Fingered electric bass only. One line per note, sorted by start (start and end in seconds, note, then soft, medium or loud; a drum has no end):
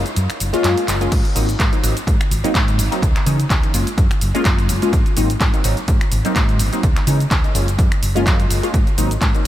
0.17 0.26 F#2 medium
0.30 muted fingered electric bass stroke soft
0.41 0.50 F#1 loud
0.54 muted fingered electric bass stroke soft
0.65 0.74 F#2 loud
0.88 1.06 F#1 loud
1.12 1.21 G#2 loud
1.36 1.53 G#1 medium
1.60 1.69 G#2 medium
1.84 1.93 G#1 medium
2.07 2.16 G#2 medium
2.31 2.40 G#1 loud
2.44 muted fingered electric bass stroke soft
2.55 2.80 G#2 loud
2.79 2.88 G#1 medium
3.02 3.12 C#2 loud
3.27 3.44 C#3 medium
3.50 3.59 C#2 medium
3.74 3.83 F#1 medium
3.98 4.07 F#2 medium
4.22 4.31 F#1 loud
4.45 4.71 F#2 loud
4.69 4.78 F#1 medium
4.93 5.02 G#2 loud
5.17 5.34 G#1 medium
5.41 5.50 G#2 medium
5.65 5.74 G#1 medium
5.88 5.97 G#2 loud
6.12 6.21 G#1 loud
6.25 muted fingered electric bass stroke soft
6.36 6.61 G#2 loud
6.60 6.69 G#1 medium
6.83 6.93 C#2 loud
7.07 7.25 C#3 medium
7.31 7.40 C#2 medium
7.55 7.80 F#1 medium
7.79 7.88 F#2 loud
7.92 muted fingered electric bass stroke soft
8.03 8.28 F#1 medium
8.26 8.44 F#2 medium
8.50 8.59 F#1 medium
8.74 8.83 G#2 loud
8.98 9.15 G#1 medium
9.22 9.31 G#2 medium